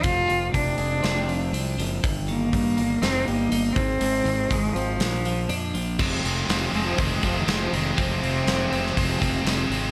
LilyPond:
<<
  \new Staff \with { instrumentName = "Cello" } { \clef bass \time 4/4 \key f \dorian \tempo 4 = 121 f'4 d'2~ d'8 r8 | r8 bes4. c'8 bes4 c'8~ | c'4 aes8 f2 r8 | r4. aes16 f16 ees16 aes16 f16 ees16 aes16 f16 ees8 |
c2. r4 | }
  \new Staff \with { instrumentName = "Clean electric guitar" } { \clef bass \time 4/4 \key f \dorian <f, f c'>8 c8 c8 aes8 c'8 f8 c'8 f8 | g,8 ees8 ees8 bes8 ees'8 g8 ees'8 aes,8 | aes,8 ees8 ees8 c'8 bes,8 f8 d'8 f8 | <f, c f aes c'>8 <f aes c'>8 <c f aes c'>8 <f, c f aes c'>8 <c f aes c'>8 <f, c f aes c'>8 <c f aes c'>8 <f aes c'>8 |
<f, c f aes c'>8 <f aes c'>8 <c f aes c'>8 <f, c f aes c'>8 <c f aes c'>8 <f, c f aes c'>8 <c f aes c'>8 <f aes c'>8 | }
  \new Staff \with { instrumentName = "Distorted electric guitar" } { \clef bass \time 4/4 \key f \dorian r1 | r1 | r1 | <f, c f aes c'>8 <f, c f aes c'>8 <f, c f aes c'>8 <f, c f aes c'>8 <f, c f aes c'>8 <f, c f aes c'>8 <f, c f aes c'>8 <f, c f aes c'>8 |
<f, c f aes c'>8 <f, c f aes c'>8 <f, c f aes c'>8 <f, c f aes c'>8 <f, c f aes c'>8 <f, c f aes c'>8 <f, c f aes c'>8 <f, c f aes c'>8 | }
  \new Staff \with { instrumentName = "Fingered electric bass" } { \clef bass \time 4/4 \key f \dorian f,,8 f,,8 f,,8 f,,8 f,,4 c,8 ges,,8 | g,,4 g,8 g,,8 f,,8 g,,8 g,,8 aes,,8 | aes,,8 aes,,8 aes,,8 aes,,8 bes,,4 f,8 bes,,8 | f,,8 f,,8 f,,8 f,,8 f,,8 f,,8 f,,8 f,,8 |
f,,8 f,,8 f,,8 f,,8 f,,8 f,,8 f,,8 aes,,8 | }
  \new DrumStaff \with { instrumentName = "Drums" } \drummode { \time 4/4 <hho bd>8 hho8 <hho bd>8 hho8 <hho sn>8 hho8 hho8 hho8 | <hho bd>8 hho8 <hho bd>8 hho8 <hho sn>8 hho8 hho8 <hho bd>8 | hho8 hho8 <hho bd>8 hho8 <hho sn>8 hho8 hho8 hho8 | <cymc bd>8 hho8 <hho sn>8 hho8 <hho bd>8 <hho bd>8 <hho sn>8 hho8 |
<hho bd>8 hho8 <hho sn>8 hho16 sn16 <hho bd>8 <hho bd>8 <hho sn>8 hho8 | }
>>